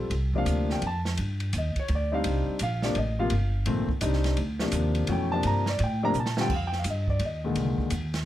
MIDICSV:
0, 0, Header, 1, 5, 480
1, 0, Start_track
1, 0, Tempo, 354820
1, 149, Time_signature, 3, 2, 24, 8
1, 11162, End_track
2, 0, Start_track
2, 0, Title_t, "Grand piano"
2, 0, Program_c, 0, 0
2, 0, Note_on_c, 0, 55, 57
2, 0, Note_on_c, 0, 60, 51
2, 0, Note_on_c, 0, 65, 55
2, 0, Note_on_c, 0, 69, 62
2, 152, Note_off_c, 0, 55, 0
2, 154, Note_off_c, 0, 60, 0
2, 155, Note_off_c, 0, 65, 0
2, 156, Note_off_c, 0, 69, 0
2, 472, Note_on_c, 0, 53, 63
2, 474, Note_on_c, 0, 48, 67
2, 476, Note_on_c, 0, 58, 60
2, 483, Note_on_c, 0, 62, 73
2, 511, Note_on_c, 0, 77, 86
2, 936, Note_off_c, 0, 77, 0
2, 977, Note_on_c, 0, 79, 78
2, 1084, Note_off_c, 0, 53, 0
2, 1085, Note_off_c, 0, 48, 0
2, 1086, Note_off_c, 0, 58, 0
2, 1090, Note_off_c, 0, 62, 0
2, 1125, Note_off_c, 0, 79, 0
2, 1175, Note_on_c, 0, 81, 87
2, 1343, Note_off_c, 0, 81, 0
2, 2137, Note_on_c, 0, 75, 73
2, 2409, Note_off_c, 0, 75, 0
2, 2428, Note_on_c, 0, 73, 81
2, 2555, Note_off_c, 0, 73, 0
2, 2575, Note_on_c, 0, 73, 51
2, 2602, Note_off_c, 0, 73, 0
2, 2638, Note_on_c, 0, 74, 73
2, 2866, Note_on_c, 0, 62, 64
2, 2870, Note_on_c, 0, 63, 71
2, 2871, Note_on_c, 0, 55, 60
2, 2872, Note_on_c, 0, 60, 59
2, 2899, Note_on_c, 0, 77, 87
2, 2901, Note_off_c, 0, 74, 0
2, 3332, Note_off_c, 0, 77, 0
2, 3483, Note_off_c, 0, 62, 0
2, 3485, Note_off_c, 0, 63, 0
2, 3486, Note_off_c, 0, 55, 0
2, 3486, Note_off_c, 0, 60, 0
2, 3556, Note_on_c, 0, 77, 82
2, 3836, Note_on_c, 0, 74, 79
2, 3838, Note_on_c, 0, 48, 64
2, 3840, Note_off_c, 0, 77, 0
2, 3843, Note_on_c, 0, 53, 60
2, 3850, Note_on_c, 0, 62, 69
2, 3852, Note_on_c, 0, 58, 61
2, 3986, Note_off_c, 0, 48, 0
2, 3988, Note_off_c, 0, 53, 0
2, 3992, Note_off_c, 0, 62, 0
2, 3993, Note_off_c, 0, 58, 0
2, 3997, Note_off_c, 0, 74, 0
2, 4035, Note_on_c, 0, 75, 75
2, 4317, Note_on_c, 0, 48, 71
2, 4319, Note_off_c, 0, 75, 0
2, 4320, Note_on_c, 0, 53, 62
2, 4322, Note_on_c, 0, 77, 82
2, 4329, Note_on_c, 0, 65, 76
2, 4332, Note_on_c, 0, 58, 61
2, 4466, Note_off_c, 0, 48, 0
2, 4467, Note_off_c, 0, 53, 0
2, 4471, Note_off_c, 0, 65, 0
2, 4473, Note_off_c, 0, 58, 0
2, 4920, Note_off_c, 0, 77, 0
2, 4947, Note_on_c, 0, 46, 67
2, 4950, Note_on_c, 0, 57, 60
2, 4951, Note_on_c, 0, 51, 59
2, 4956, Note_on_c, 0, 60, 73
2, 5233, Note_off_c, 0, 46, 0
2, 5234, Note_off_c, 0, 57, 0
2, 5235, Note_off_c, 0, 51, 0
2, 5237, Note_off_c, 0, 60, 0
2, 5429, Note_on_c, 0, 62, 64
2, 5437, Note_on_c, 0, 60, 57
2, 5445, Note_on_c, 0, 55, 59
2, 5446, Note_on_c, 0, 63, 73
2, 5913, Note_off_c, 0, 62, 0
2, 5918, Note_off_c, 0, 60, 0
2, 5922, Note_off_c, 0, 55, 0
2, 5922, Note_off_c, 0, 63, 0
2, 6233, Note_on_c, 0, 48, 68
2, 6233, Note_on_c, 0, 53, 58
2, 6238, Note_on_c, 0, 62, 70
2, 6240, Note_on_c, 0, 58, 59
2, 6846, Note_off_c, 0, 48, 0
2, 6846, Note_off_c, 0, 53, 0
2, 6848, Note_off_c, 0, 62, 0
2, 6849, Note_off_c, 0, 58, 0
2, 6882, Note_on_c, 0, 47, 61
2, 6882, Note_on_c, 0, 52, 60
2, 6886, Note_on_c, 0, 57, 58
2, 6890, Note_on_c, 0, 61, 70
2, 6931, Note_on_c, 0, 79, 84
2, 7159, Note_off_c, 0, 47, 0
2, 7160, Note_off_c, 0, 52, 0
2, 7161, Note_off_c, 0, 57, 0
2, 7163, Note_off_c, 0, 61, 0
2, 7194, Note_on_c, 0, 81, 100
2, 7205, Note_on_c, 0, 48, 63
2, 7206, Note_off_c, 0, 79, 0
2, 7206, Note_on_c, 0, 53, 58
2, 7212, Note_on_c, 0, 58, 55
2, 7216, Note_on_c, 0, 62, 70
2, 7355, Note_off_c, 0, 81, 0
2, 7398, Note_on_c, 0, 82, 94
2, 7614, Note_off_c, 0, 48, 0
2, 7614, Note_off_c, 0, 53, 0
2, 7617, Note_off_c, 0, 58, 0
2, 7619, Note_off_c, 0, 62, 0
2, 7679, Note_off_c, 0, 82, 0
2, 7701, Note_on_c, 0, 74, 76
2, 7849, Note_off_c, 0, 74, 0
2, 7895, Note_on_c, 0, 79, 84
2, 8156, Note_on_c, 0, 48, 80
2, 8161, Note_on_c, 0, 58, 72
2, 8162, Note_on_c, 0, 53, 69
2, 8165, Note_on_c, 0, 62, 84
2, 8168, Note_off_c, 0, 79, 0
2, 8181, Note_on_c, 0, 82, 107
2, 8303, Note_off_c, 0, 48, 0
2, 8306, Note_off_c, 0, 53, 0
2, 8306, Note_off_c, 0, 58, 0
2, 8308, Note_off_c, 0, 62, 0
2, 8328, Note_off_c, 0, 82, 0
2, 8385, Note_on_c, 0, 81, 80
2, 8626, Note_on_c, 0, 60, 64
2, 8628, Note_on_c, 0, 50, 69
2, 8632, Note_on_c, 0, 55, 66
2, 8635, Note_on_c, 0, 65, 75
2, 8653, Note_off_c, 0, 81, 0
2, 8669, Note_on_c, 0, 79, 98
2, 8778, Note_off_c, 0, 60, 0
2, 8779, Note_off_c, 0, 50, 0
2, 8780, Note_off_c, 0, 55, 0
2, 8782, Note_off_c, 0, 65, 0
2, 8812, Note_off_c, 0, 79, 0
2, 8864, Note_on_c, 0, 77, 72
2, 8985, Note_off_c, 0, 77, 0
2, 9026, Note_on_c, 0, 79, 91
2, 9146, Note_off_c, 0, 79, 0
2, 9184, Note_on_c, 0, 77, 71
2, 9305, Note_off_c, 0, 77, 0
2, 9333, Note_on_c, 0, 75, 72
2, 9599, Note_on_c, 0, 74, 74
2, 9606, Note_off_c, 0, 75, 0
2, 9756, Note_off_c, 0, 74, 0
2, 9811, Note_on_c, 0, 75, 70
2, 10068, Note_on_c, 0, 51, 56
2, 10072, Note_on_c, 0, 46, 62
2, 10080, Note_on_c, 0, 56, 57
2, 10088, Note_on_c, 0, 50, 66
2, 10680, Note_off_c, 0, 51, 0
2, 10682, Note_off_c, 0, 46, 0
2, 10685, Note_off_c, 0, 56, 0
2, 10686, Note_off_c, 0, 75, 0
2, 10690, Note_off_c, 0, 50, 0
2, 11162, End_track
3, 0, Start_track
3, 0, Title_t, "Upright bass"
3, 0, Program_c, 1, 32
3, 132, Note_on_c, 1, 36, 72
3, 608, Note_off_c, 1, 36, 0
3, 613, Note_on_c, 1, 38, 92
3, 1089, Note_off_c, 1, 38, 0
3, 1107, Note_on_c, 1, 41, 81
3, 1577, Note_off_c, 1, 41, 0
3, 1603, Note_on_c, 1, 43, 78
3, 2065, Note_off_c, 1, 43, 0
3, 2073, Note_on_c, 1, 39, 91
3, 2364, Note_off_c, 1, 39, 0
3, 2556, Note_on_c, 1, 38, 87
3, 3023, Note_off_c, 1, 38, 0
3, 3040, Note_on_c, 1, 36, 75
3, 3329, Note_off_c, 1, 36, 0
3, 3527, Note_on_c, 1, 34, 88
3, 3989, Note_off_c, 1, 34, 0
3, 4001, Note_on_c, 1, 33, 83
3, 4466, Note_off_c, 1, 33, 0
3, 4479, Note_on_c, 1, 31, 77
3, 4944, Note_off_c, 1, 31, 0
3, 4962, Note_on_c, 1, 34, 91
3, 5250, Note_off_c, 1, 34, 0
3, 5433, Note_on_c, 1, 36, 89
3, 5901, Note_off_c, 1, 36, 0
3, 5918, Note_on_c, 1, 38, 77
3, 6383, Note_off_c, 1, 38, 0
3, 6391, Note_on_c, 1, 39, 92
3, 6860, Note_off_c, 1, 39, 0
3, 6879, Note_on_c, 1, 41, 88
3, 7343, Note_off_c, 1, 41, 0
3, 7367, Note_on_c, 1, 43, 80
3, 7827, Note_off_c, 1, 43, 0
3, 7846, Note_on_c, 1, 45, 98
3, 8306, Note_off_c, 1, 45, 0
3, 8318, Note_on_c, 1, 46, 92
3, 8778, Note_off_c, 1, 46, 0
3, 8786, Note_on_c, 1, 41, 72
3, 9255, Note_off_c, 1, 41, 0
3, 9266, Note_on_c, 1, 43, 88
3, 9728, Note_off_c, 1, 43, 0
3, 9736, Note_on_c, 1, 39, 82
3, 10209, Note_off_c, 1, 39, 0
3, 10222, Note_on_c, 1, 36, 75
3, 10515, Note_off_c, 1, 36, 0
3, 10700, Note_on_c, 1, 39, 91
3, 11162, Note_off_c, 1, 39, 0
3, 11162, End_track
4, 0, Start_track
4, 0, Title_t, "Muted upright bass strokes"
4, 2378, Note_on_c, 9, 29, 36
4, 2513, Note_off_c, 9, 29, 0
4, 5255, Note_on_c, 9, 29, 38
4, 5390, Note_off_c, 9, 29, 0
4, 10530, Note_on_c, 9, 29, 32
4, 10665, Note_off_c, 9, 29, 0
4, 11162, End_track
5, 0, Start_track
5, 0, Title_t, "Drums"
5, 143, Note_on_c, 9, 51, 57
5, 279, Note_off_c, 9, 51, 0
5, 455, Note_on_c, 9, 36, 49
5, 590, Note_off_c, 9, 36, 0
5, 623, Note_on_c, 9, 44, 54
5, 623, Note_on_c, 9, 51, 60
5, 758, Note_off_c, 9, 44, 0
5, 758, Note_off_c, 9, 51, 0
5, 945, Note_on_c, 9, 38, 44
5, 1080, Note_off_c, 9, 38, 0
5, 1106, Note_on_c, 9, 51, 56
5, 1242, Note_off_c, 9, 51, 0
5, 1425, Note_on_c, 9, 38, 55
5, 1560, Note_off_c, 9, 38, 0
5, 1587, Note_on_c, 9, 51, 59
5, 1723, Note_off_c, 9, 51, 0
5, 1895, Note_on_c, 9, 51, 45
5, 2030, Note_off_c, 9, 51, 0
5, 2066, Note_on_c, 9, 44, 52
5, 2066, Note_on_c, 9, 51, 65
5, 2202, Note_off_c, 9, 44, 0
5, 2202, Note_off_c, 9, 51, 0
5, 2379, Note_on_c, 9, 51, 46
5, 2381, Note_on_c, 9, 36, 45
5, 2515, Note_off_c, 9, 51, 0
5, 2517, Note_off_c, 9, 36, 0
5, 2547, Note_on_c, 9, 51, 58
5, 2683, Note_off_c, 9, 51, 0
5, 3030, Note_on_c, 9, 51, 70
5, 3166, Note_off_c, 9, 51, 0
5, 3506, Note_on_c, 9, 44, 57
5, 3506, Note_on_c, 9, 51, 64
5, 3641, Note_off_c, 9, 44, 0
5, 3641, Note_off_c, 9, 51, 0
5, 3820, Note_on_c, 9, 38, 54
5, 3955, Note_off_c, 9, 38, 0
5, 3989, Note_on_c, 9, 51, 56
5, 4124, Note_off_c, 9, 51, 0
5, 4463, Note_on_c, 9, 51, 63
5, 4598, Note_off_c, 9, 51, 0
5, 4947, Note_on_c, 9, 51, 57
5, 5082, Note_off_c, 9, 51, 0
5, 5258, Note_on_c, 9, 36, 64
5, 5393, Note_off_c, 9, 36, 0
5, 5423, Note_on_c, 9, 44, 58
5, 5423, Note_on_c, 9, 51, 69
5, 5558, Note_off_c, 9, 44, 0
5, 5558, Note_off_c, 9, 51, 0
5, 5589, Note_on_c, 9, 38, 29
5, 5724, Note_off_c, 9, 38, 0
5, 5737, Note_on_c, 9, 51, 47
5, 5744, Note_on_c, 9, 38, 45
5, 5872, Note_off_c, 9, 51, 0
5, 5880, Note_off_c, 9, 38, 0
5, 5908, Note_on_c, 9, 51, 59
5, 6043, Note_off_c, 9, 51, 0
5, 6216, Note_on_c, 9, 38, 61
5, 6351, Note_off_c, 9, 38, 0
5, 6380, Note_on_c, 9, 44, 60
5, 6380, Note_on_c, 9, 51, 67
5, 6515, Note_off_c, 9, 44, 0
5, 6515, Note_off_c, 9, 51, 0
5, 6693, Note_on_c, 9, 51, 47
5, 6828, Note_off_c, 9, 51, 0
5, 6860, Note_on_c, 9, 51, 63
5, 6995, Note_off_c, 9, 51, 0
5, 7347, Note_on_c, 9, 51, 64
5, 7482, Note_off_c, 9, 51, 0
5, 7660, Note_on_c, 9, 38, 58
5, 7795, Note_off_c, 9, 38, 0
5, 7828, Note_on_c, 9, 51, 57
5, 7963, Note_off_c, 9, 51, 0
5, 8304, Note_on_c, 9, 44, 52
5, 8439, Note_off_c, 9, 44, 0
5, 8465, Note_on_c, 9, 38, 58
5, 8600, Note_off_c, 9, 38, 0
5, 8617, Note_on_c, 9, 38, 87
5, 8753, Note_off_c, 9, 38, 0
5, 8788, Note_on_c, 9, 36, 69
5, 8789, Note_on_c, 9, 49, 68
5, 8923, Note_off_c, 9, 36, 0
5, 8925, Note_off_c, 9, 49, 0
5, 9099, Note_on_c, 9, 38, 35
5, 9234, Note_off_c, 9, 38, 0
5, 9256, Note_on_c, 9, 44, 57
5, 9256, Note_on_c, 9, 51, 69
5, 9391, Note_off_c, 9, 44, 0
5, 9391, Note_off_c, 9, 51, 0
5, 9573, Note_on_c, 9, 36, 60
5, 9708, Note_off_c, 9, 36, 0
5, 9733, Note_on_c, 9, 51, 55
5, 9868, Note_off_c, 9, 51, 0
5, 10220, Note_on_c, 9, 51, 57
5, 10355, Note_off_c, 9, 51, 0
5, 10527, Note_on_c, 9, 36, 55
5, 10662, Note_off_c, 9, 36, 0
5, 10692, Note_on_c, 9, 44, 52
5, 10692, Note_on_c, 9, 51, 65
5, 10827, Note_off_c, 9, 44, 0
5, 10827, Note_off_c, 9, 51, 0
5, 11008, Note_on_c, 9, 51, 44
5, 11011, Note_on_c, 9, 38, 54
5, 11144, Note_off_c, 9, 51, 0
5, 11146, Note_off_c, 9, 38, 0
5, 11162, End_track
0, 0, End_of_file